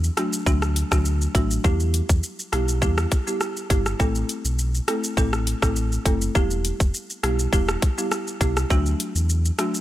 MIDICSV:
0, 0, Header, 1, 4, 480
1, 0, Start_track
1, 0, Key_signature, 1, "minor"
1, 0, Tempo, 588235
1, 1343, Time_signature, 4, 2, 24, 8
1, 8003, End_track
2, 0, Start_track
2, 0, Title_t, "Marimba"
2, 0, Program_c, 0, 12
2, 0, Note_on_c, 0, 54, 96
2, 0, Note_on_c, 0, 57, 86
2, 0, Note_on_c, 0, 62, 88
2, 0, Note_on_c, 0, 66, 104
2, 87, Note_off_c, 0, 54, 0
2, 88, Note_off_c, 0, 57, 0
2, 89, Note_off_c, 0, 62, 0
2, 90, Note_off_c, 0, 66, 0
2, 139, Note_on_c, 0, 54, 77
2, 139, Note_on_c, 0, 57, 70
2, 142, Note_on_c, 0, 62, 69
2, 143, Note_on_c, 0, 66, 83
2, 363, Note_off_c, 0, 54, 0
2, 363, Note_off_c, 0, 57, 0
2, 364, Note_off_c, 0, 62, 0
2, 365, Note_off_c, 0, 66, 0
2, 377, Note_on_c, 0, 54, 94
2, 380, Note_on_c, 0, 57, 83
2, 381, Note_on_c, 0, 62, 88
2, 383, Note_on_c, 0, 66, 100
2, 496, Note_off_c, 0, 54, 0
2, 498, Note_off_c, 0, 57, 0
2, 498, Note_off_c, 0, 62, 0
2, 499, Note_off_c, 0, 66, 0
2, 745, Note_on_c, 0, 54, 75
2, 747, Note_on_c, 0, 57, 71
2, 748, Note_on_c, 0, 62, 70
2, 750, Note_on_c, 0, 66, 86
2, 851, Note_off_c, 0, 54, 0
2, 852, Note_off_c, 0, 57, 0
2, 852, Note_off_c, 0, 62, 0
2, 853, Note_off_c, 0, 66, 0
2, 1098, Note_on_c, 0, 54, 78
2, 1100, Note_on_c, 0, 57, 71
2, 1102, Note_on_c, 0, 62, 73
2, 1103, Note_on_c, 0, 66, 88
2, 1217, Note_off_c, 0, 54, 0
2, 1218, Note_off_c, 0, 57, 0
2, 1219, Note_off_c, 0, 62, 0
2, 1219, Note_off_c, 0, 66, 0
2, 1339, Note_on_c, 0, 55, 94
2, 1341, Note_on_c, 0, 59, 87
2, 1342, Note_on_c, 0, 64, 86
2, 1344, Note_on_c, 0, 67, 108
2, 2007, Note_off_c, 0, 55, 0
2, 2008, Note_off_c, 0, 59, 0
2, 2009, Note_off_c, 0, 64, 0
2, 2009, Note_off_c, 0, 67, 0
2, 2059, Note_on_c, 0, 55, 74
2, 2061, Note_on_c, 0, 59, 70
2, 2063, Note_on_c, 0, 64, 69
2, 2065, Note_on_c, 0, 67, 84
2, 2283, Note_off_c, 0, 55, 0
2, 2284, Note_off_c, 0, 59, 0
2, 2285, Note_off_c, 0, 64, 0
2, 2286, Note_off_c, 0, 67, 0
2, 2298, Note_on_c, 0, 55, 93
2, 2300, Note_on_c, 0, 59, 88
2, 2303, Note_on_c, 0, 64, 84
2, 2304, Note_on_c, 0, 67, 100
2, 2417, Note_off_c, 0, 55, 0
2, 2418, Note_off_c, 0, 59, 0
2, 2419, Note_off_c, 0, 64, 0
2, 2420, Note_off_c, 0, 67, 0
2, 2668, Note_on_c, 0, 55, 75
2, 2670, Note_on_c, 0, 59, 67
2, 2671, Note_on_c, 0, 64, 66
2, 2673, Note_on_c, 0, 67, 83
2, 2772, Note_off_c, 0, 55, 0
2, 2773, Note_off_c, 0, 59, 0
2, 2774, Note_off_c, 0, 64, 0
2, 2775, Note_off_c, 0, 67, 0
2, 3019, Note_on_c, 0, 55, 81
2, 3020, Note_on_c, 0, 59, 72
2, 3022, Note_on_c, 0, 64, 73
2, 3024, Note_on_c, 0, 67, 88
2, 3137, Note_off_c, 0, 55, 0
2, 3138, Note_off_c, 0, 59, 0
2, 3139, Note_off_c, 0, 64, 0
2, 3140, Note_off_c, 0, 67, 0
2, 3260, Note_on_c, 0, 57, 97
2, 3262, Note_on_c, 0, 60, 87
2, 3263, Note_on_c, 0, 64, 85
2, 3265, Note_on_c, 0, 69, 106
2, 3927, Note_off_c, 0, 57, 0
2, 3928, Note_off_c, 0, 60, 0
2, 3929, Note_off_c, 0, 64, 0
2, 3930, Note_off_c, 0, 69, 0
2, 3980, Note_on_c, 0, 57, 75
2, 3981, Note_on_c, 0, 60, 68
2, 3983, Note_on_c, 0, 64, 67
2, 3984, Note_on_c, 0, 69, 87
2, 4204, Note_off_c, 0, 57, 0
2, 4204, Note_off_c, 0, 60, 0
2, 4205, Note_off_c, 0, 64, 0
2, 4206, Note_off_c, 0, 69, 0
2, 4221, Note_on_c, 0, 57, 94
2, 4222, Note_on_c, 0, 60, 84
2, 4224, Note_on_c, 0, 64, 85
2, 4226, Note_on_c, 0, 69, 104
2, 4338, Note_off_c, 0, 57, 0
2, 4339, Note_off_c, 0, 60, 0
2, 4340, Note_off_c, 0, 64, 0
2, 4341, Note_off_c, 0, 69, 0
2, 4588, Note_on_c, 0, 57, 75
2, 4589, Note_on_c, 0, 60, 69
2, 4591, Note_on_c, 0, 64, 70
2, 4593, Note_on_c, 0, 69, 84
2, 4692, Note_off_c, 0, 57, 0
2, 4693, Note_off_c, 0, 60, 0
2, 4694, Note_off_c, 0, 64, 0
2, 4695, Note_off_c, 0, 69, 0
2, 4942, Note_on_c, 0, 57, 78
2, 4943, Note_on_c, 0, 60, 75
2, 4945, Note_on_c, 0, 64, 74
2, 4947, Note_on_c, 0, 69, 87
2, 5059, Note_off_c, 0, 57, 0
2, 5059, Note_off_c, 0, 60, 0
2, 5060, Note_off_c, 0, 64, 0
2, 5061, Note_off_c, 0, 69, 0
2, 5182, Note_on_c, 0, 55, 93
2, 5183, Note_on_c, 0, 59, 88
2, 5185, Note_on_c, 0, 64, 85
2, 5187, Note_on_c, 0, 67, 109
2, 5848, Note_off_c, 0, 55, 0
2, 5849, Note_off_c, 0, 59, 0
2, 5850, Note_off_c, 0, 64, 0
2, 5851, Note_off_c, 0, 67, 0
2, 5902, Note_on_c, 0, 55, 79
2, 5904, Note_on_c, 0, 59, 73
2, 5905, Note_on_c, 0, 64, 68
2, 5907, Note_on_c, 0, 67, 86
2, 6125, Note_off_c, 0, 55, 0
2, 6125, Note_off_c, 0, 59, 0
2, 6126, Note_off_c, 0, 64, 0
2, 6127, Note_off_c, 0, 67, 0
2, 6143, Note_on_c, 0, 55, 93
2, 6145, Note_on_c, 0, 59, 88
2, 6145, Note_on_c, 0, 64, 85
2, 6148, Note_on_c, 0, 67, 106
2, 6259, Note_off_c, 0, 55, 0
2, 6260, Note_off_c, 0, 59, 0
2, 6261, Note_off_c, 0, 64, 0
2, 6262, Note_off_c, 0, 67, 0
2, 6509, Note_on_c, 0, 55, 80
2, 6511, Note_on_c, 0, 59, 70
2, 6513, Note_on_c, 0, 64, 70
2, 6515, Note_on_c, 0, 67, 83
2, 6613, Note_off_c, 0, 55, 0
2, 6614, Note_off_c, 0, 59, 0
2, 6615, Note_off_c, 0, 64, 0
2, 6616, Note_off_c, 0, 67, 0
2, 6862, Note_on_c, 0, 55, 82
2, 6864, Note_on_c, 0, 59, 76
2, 6865, Note_on_c, 0, 64, 75
2, 6866, Note_on_c, 0, 67, 86
2, 6979, Note_off_c, 0, 55, 0
2, 6980, Note_off_c, 0, 59, 0
2, 6980, Note_off_c, 0, 64, 0
2, 6981, Note_off_c, 0, 67, 0
2, 7102, Note_on_c, 0, 54, 96
2, 7104, Note_on_c, 0, 57, 88
2, 7106, Note_on_c, 0, 62, 87
2, 7108, Note_on_c, 0, 66, 106
2, 7768, Note_off_c, 0, 54, 0
2, 7769, Note_off_c, 0, 57, 0
2, 7770, Note_off_c, 0, 62, 0
2, 7771, Note_off_c, 0, 66, 0
2, 7821, Note_on_c, 0, 54, 74
2, 7822, Note_on_c, 0, 57, 68
2, 7825, Note_on_c, 0, 62, 70
2, 7825, Note_on_c, 0, 66, 82
2, 8003, Note_off_c, 0, 54, 0
2, 8003, Note_off_c, 0, 57, 0
2, 8003, Note_off_c, 0, 62, 0
2, 8003, Note_off_c, 0, 66, 0
2, 8003, End_track
3, 0, Start_track
3, 0, Title_t, "Sub bass"
3, 0, Program_c, 1, 38
3, 0, Note_on_c, 1, 40, 100
3, 84, Note_off_c, 1, 40, 0
3, 379, Note_on_c, 1, 38, 89
3, 686, Note_off_c, 1, 38, 0
3, 748, Note_on_c, 1, 38, 96
3, 1042, Note_off_c, 1, 38, 0
3, 1099, Note_on_c, 1, 33, 91
3, 1300, Note_off_c, 1, 33, 0
3, 1342, Note_on_c, 1, 40, 108
3, 1648, Note_off_c, 1, 40, 0
3, 1709, Note_on_c, 1, 40, 88
3, 1803, Note_off_c, 1, 40, 0
3, 2063, Note_on_c, 1, 35, 95
3, 2300, Note_on_c, 1, 40, 101
3, 2312, Note_off_c, 1, 35, 0
3, 2501, Note_off_c, 1, 40, 0
3, 3020, Note_on_c, 1, 31, 89
3, 3221, Note_off_c, 1, 31, 0
3, 3263, Note_on_c, 1, 33, 108
3, 3462, Note_off_c, 1, 33, 0
3, 3629, Note_on_c, 1, 35, 96
3, 3923, Note_off_c, 1, 35, 0
3, 4220, Note_on_c, 1, 33, 101
3, 4527, Note_off_c, 1, 33, 0
3, 4589, Note_on_c, 1, 33, 99
3, 4883, Note_off_c, 1, 33, 0
3, 4941, Note_on_c, 1, 30, 91
3, 5141, Note_off_c, 1, 30, 0
3, 5184, Note_on_c, 1, 28, 105
3, 5489, Note_off_c, 1, 28, 0
3, 5551, Note_on_c, 1, 28, 87
3, 5644, Note_off_c, 1, 28, 0
3, 5903, Note_on_c, 1, 35, 88
3, 6103, Note_off_c, 1, 35, 0
3, 6141, Note_on_c, 1, 28, 101
3, 6341, Note_off_c, 1, 28, 0
3, 6861, Note_on_c, 1, 36, 87
3, 7061, Note_off_c, 1, 36, 0
3, 7103, Note_on_c, 1, 38, 104
3, 7302, Note_off_c, 1, 38, 0
3, 7469, Note_on_c, 1, 40, 101
3, 7763, Note_off_c, 1, 40, 0
3, 8003, End_track
4, 0, Start_track
4, 0, Title_t, "Drums"
4, 31, Note_on_c, 9, 82, 53
4, 113, Note_off_c, 9, 82, 0
4, 141, Note_on_c, 9, 37, 85
4, 141, Note_on_c, 9, 42, 65
4, 141, Note_on_c, 9, 82, 46
4, 223, Note_off_c, 9, 37, 0
4, 223, Note_off_c, 9, 42, 0
4, 223, Note_off_c, 9, 82, 0
4, 268, Note_on_c, 9, 82, 83
4, 350, Note_off_c, 9, 82, 0
4, 379, Note_on_c, 9, 36, 94
4, 381, Note_on_c, 9, 82, 79
4, 461, Note_off_c, 9, 36, 0
4, 463, Note_off_c, 9, 82, 0
4, 508, Note_on_c, 9, 37, 94
4, 508, Note_on_c, 9, 82, 50
4, 590, Note_off_c, 9, 37, 0
4, 590, Note_off_c, 9, 82, 0
4, 621, Note_on_c, 9, 42, 74
4, 621, Note_on_c, 9, 82, 55
4, 703, Note_off_c, 9, 42, 0
4, 703, Note_off_c, 9, 82, 0
4, 748, Note_on_c, 9, 36, 94
4, 748, Note_on_c, 9, 37, 92
4, 749, Note_on_c, 9, 82, 75
4, 830, Note_off_c, 9, 36, 0
4, 830, Note_off_c, 9, 37, 0
4, 831, Note_off_c, 9, 82, 0
4, 859, Note_on_c, 9, 82, 71
4, 941, Note_off_c, 9, 82, 0
4, 990, Note_on_c, 9, 82, 55
4, 1072, Note_off_c, 9, 82, 0
4, 1099, Note_on_c, 9, 36, 93
4, 1101, Note_on_c, 9, 42, 62
4, 1101, Note_on_c, 9, 82, 46
4, 1181, Note_off_c, 9, 36, 0
4, 1183, Note_off_c, 9, 42, 0
4, 1183, Note_off_c, 9, 82, 0
4, 1230, Note_on_c, 9, 82, 76
4, 1311, Note_off_c, 9, 82, 0
4, 1342, Note_on_c, 9, 36, 114
4, 1342, Note_on_c, 9, 82, 64
4, 1423, Note_off_c, 9, 36, 0
4, 1423, Note_off_c, 9, 82, 0
4, 1468, Note_on_c, 9, 82, 50
4, 1550, Note_off_c, 9, 82, 0
4, 1582, Note_on_c, 9, 42, 73
4, 1582, Note_on_c, 9, 82, 51
4, 1664, Note_off_c, 9, 42, 0
4, 1664, Note_off_c, 9, 82, 0
4, 1709, Note_on_c, 9, 36, 95
4, 1709, Note_on_c, 9, 82, 82
4, 1790, Note_off_c, 9, 82, 0
4, 1791, Note_off_c, 9, 36, 0
4, 1822, Note_on_c, 9, 82, 74
4, 1903, Note_off_c, 9, 82, 0
4, 1952, Note_on_c, 9, 82, 55
4, 2033, Note_off_c, 9, 82, 0
4, 2062, Note_on_c, 9, 37, 85
4, 2062, Note_on_c, 9, 42, 66
4, 2062, Note_on_c, 9, 82, 46
4, 2144, Note_off_c, 9, 37, 0
4, 2144, Note_off_c, 9, 42, 0
4, 2144, Note_off_c, 9, 82, 0
4, 2189, Note_on_c, 9, 82, 81
4, 2271, Note_off_c, 9, 82, 0
4, 2300, Note_on_c, 9, 36, 90
4, 2302, Note_on_c, 9, 82, 79
4, 2382, Note_off_c, 9, 36, 0
4, 2384, Note_off_c, 9, 82, 0
4, 2429, Note_on_c, 9, 37, 96
4, 2429, Note_on_c, 9, 82, 51
4, 2511, Note_off_c, 9, 37, 0
4, 2511, Note_off_c, 9, 82, 0
4, 2543, Note_on_c, 9, 36, 98
4, 2543, Note_on_c, 9, 42, 74
4, 2543, Note_on_c, 9, 82, 55
4, 2624, Note_off_c, 9, 42, 0
4, 2624, Note_off_c, 9, 82, 0
4, 2625, Note_off_c, 9, 36, 0
4, 2671, Note_on_c, 9, 82, 76
4, 2753, Note_off_c, 9, 82, 0
4, 2779, Note_on_c, 9, 82, 72
4, 2780, Note_on_c, 9, 37, 87
4, 2861, Note_off_c, 9, 82, 0
4, 2862, Note_off_c, 9, 37, 0
4, 2910, Note_on_c, 9, 82, 53
4, 2992, Note_off_c, 9, 82, 0
4, 3020, Note_on_c, 9, 36, 93
4, 3022, Note_on_c, 9, 42, 65
4, 3022, Note_on_c, 9, 82, 45
4, 3102, Note_off_c, 9, 36, 0
4, 3103, Note_off_c, 9, 42, 0
4, 3103, Note_off_c, 9, 82, 0
4, 3150, Note_on_c, 9, 82, 77
4, 3151, Note_on_c, 9, 37, 94
4, 3231, Note_off_c, 9, 82, 0
4, 3232, Note_off_c, 9, 37, 0
4, 3262, Note_on_c, 9, 82, 67
4, 3263, Note_on_c, 9, 36, 116
4, 3343, Note_off_c, 9, 82, 0
4, 3344, Note_off_c, 9, 36, 0
4, 3388, Note_on_c, 9, 82, 51
4, 3470, Note_off_c, 9, 82, 0
4, 3502, Note_on_c, 9, 42, 74
4, 3502, Note_on_c, 9, 82, 53
4, 3584, Note_off_c, 9, 42, 0
4, 3584, Note_off_c, 9, 82, 0
4, 3631, Note_on_c, 9, 82, 78
4, 3713, Note_off_c, 9, 82, 0
4, 3743, Note_on_c, 9, 82, 76
4, 3825, Note_off_c, 9, 82, 0
4, 3872, Note_on_c, 9, 82, 54
4, 3954, Note_off_c, 9, 82, 0
4, 3982, Note_on_c, 9, 37, 89
4, 3982, Note_on_c, 9, 42, 62
4, 3982, Note_on_c, 9, 82, 47
4, 4064, Note_off_c, 9, 37, 0
4, 4064, Note_off_c, 9, 42, 0
4, 4064, Note_off_c, 9, 82, 0
4, 4110, Note_on_c, 9, 82, 83
4, 4192, Note_off_c, 9, 82, 0
4, 4221, Note_on_c, 9, 36, 89
4, 4223, Note_on_c, 9, 82, 77
4, 4302, Note_off_c, 9, 36, 0
4, 4304, Note_off_c, 9, 82, 0
4, 4350, Note_on_c, 9, 37, 94
4, 4350, Note_on_c, 9, 82, 49
4, 4431, Note_off_c, 9, 37, 0
4, 4432, Note_off_c, 9, 82, 0
4, 4463, Note_on_c, 9, 42, 79
4, 4463, Note_on_c, 9, 82, 55
4, 4545, Note_off_c, 9, 42, 0
4, 4545, Note_off_c, 9, 82, 0
4, 4590, Note_on_c, 9, 36, 94
4, 4590, Note_on_c, 9, 37, 92
4, 4591, Note_on_c, 9, 82, 79
4, 4671, Note_off_c, 9, 36, 0
4, 4672, Note_off_c, 9, 37, 0
4, 4673, Note_off_c, 9, 82, 0
4, 4701, Note_on_c, 9, 82, 74
4, 4783, Note_off_c, 9, 82, 0
4, 4832, Note_on_c, 9, 82, 52
4, 4914, Note_off_c, 9, 82, 0
4, 4941, Note_on_c, 9, 36, 93
4, 4943, Note_on_c, 9, 42, 67
4, 4943, Note_on_c, 9, 82, 46
4, 5023, Note_off_c, 9, 36, 0
4, 5025, Note_off_c, 9, 42, 0
4, 5025, Note_off_c, 9, 82, 0
4, 5071, Note_on_c, 9, 82, 76
4, 5153, Note_off_c, 9, 82, 0
4, 5184, Note_on_c, 9, 36, 114
4, 5184, Note_on_c, 9, 82, 65
4, 5265, Note_off_c, 9, 36, 0
4, 5265, Note_off_c, 9, 82, 0
4, 5309, Note_on_c, 9, 82, 52
4, 5391, Note_off_c, 9, 82, 0
4, 5423, Note_on_c, 9, 42, 76
4, 5423, Note_on_c, 9, 82, 53
4, 5505, Note_off_c, 9, 42, 0
4, 5505, Note_off_c, 9, 82, 0
4, 5551, Note_on_c, 9, 36, 94
4, 5551, Note_on_c, 9, 82, 80
4, 5632, Note_off_c, 9, 36, 0
4, 5633, Note_off_c, 9, 82, 0
4, 5664, Note_on_c, 9, 82, 81
4, 5746, Note_off_c, 9, 82, 0
4, 5794, Note_on_c, 9, 82, 55
4, 5875, Note_off_c, 9, 82, 0
4, 5904, Note_on_c, 9, 37, 87
4, 5904, Note_on_c, 9, 42, 66
4, 5904, Note_on_c, 9, 82, 47
4, 5986, Note_off_c, 9, 37, 0
4, 5986, Note_off_c, 9, 42, 0
4, 5986, Note_off_c, 9, 82, 0
4, 6031, Note_on_c, 9, 82, 79
4, 6113, Note_off_c, 9, 82, 0
4, 6141, Note_on_c, 9, 36, 92
4, 6145, Note_on_c, 9, 82, 81
4, 6223, Note_off_c, 9, 36, 0
4, 6226, Note_off_c, 9, 82, 0
4, 6272, Note_on_c, 9, 37, 100
4, 6272, Note_on_c, 9, 82, 52
4, 6353, Note_off_c, 9, 37, 0
4, 6353, Note_off_c, 9, 82, 0
4, 6384, Note_on_c, 9, 36, 106
4, 6384, Note_on_c, 9, 42, 76
4, 6384, Note_on_c, 9, 82, 55
4, 6466, Note_off_c, 9, 36, 0
4, 6466, Note_off_c, 9, 42, 0
4, 6466, Note_off_c, 9, 82, 0
4, 6513, Note_on_c, 9, 82, 78
4, 6594, Note_off_c, 9, 82, 0
4, 6622, Note_on_c, 9, 82, 72
4, 6623, Note_on_c, 9, 37, 90
4, 6703, Note_off_c, 9, 82, 0
4, 6704, Note_off_c, 9, 37, 0
4, 6752, Note_on_c, 9, 82, 54
4, 6834, Note_off_c, 9, 82, 0
4, 6861, Note_on_c, 9, 36, 92
4, 6863, Note_on_c, 9, 42, 64
4, 6863, Note_on_c, 9, 82, 45
4, 6942, Note_off_c, 9, 36, 0
4, 6944, Note_off_c, 9, 42, 0
4, 6944, Note_off_c, 9, 82, 0
4, 6991, Note_on_c, 9, 82, 77
4, 6992, Note_on_c, 9, 37, 90
4, 7072, Note_off_c, 9, 82, 0
4, 7073, Note_off_c, 9, 37, 0
4, 7102, Note_on_c, 9, 82, 65
4, 7103, Note_on_c, 9, 36, 114
4, 7184, Note_off_c, 9, 36, 0
4, 7184, Note_off_c, 9, 82, 0
4, 7229, Note_on_c, 9, 82, 53
4, 7311, Note_off_c, 9, 82, 0
4, 7344, Note_on_c, 9, 42, 76
4, 7344, Note_on_c, 9, 82, 53
4, 7425, Note_off_c, 9, 42, 0
4, 7425, Note_off_c, 9, 82, 0
4, 7471, Note_on_c, 9, 82, 82
4, 7553, Note_off_c, 9, 82, 0
4, 7584, Note_on_c, 9, 82, 80
4, 7666, Note_off_c, 9, 82, 0
4, 7713, Note_on_c, 9, 82, 55
4, 7794, Note_off_c, 9, 82, 0
4, 7823, Note_on_c, 9, 37, 86
4, 7823, Note_on_c, 9, 42, 67
4, 7823, Note_on_c, 9, 82, 46
4, 7904, Note_off_c, 9, 37, 0
4, 7905, Note_off_c, 9, 42, 0
4, 7905, Note_off_c, 9, 82, 0
4, 7951, Note_on_c, 9, 82, 78
4, 8003, Note_off_c, 9, 82, 0
4, 8003, End_track
0, 0, End_of_file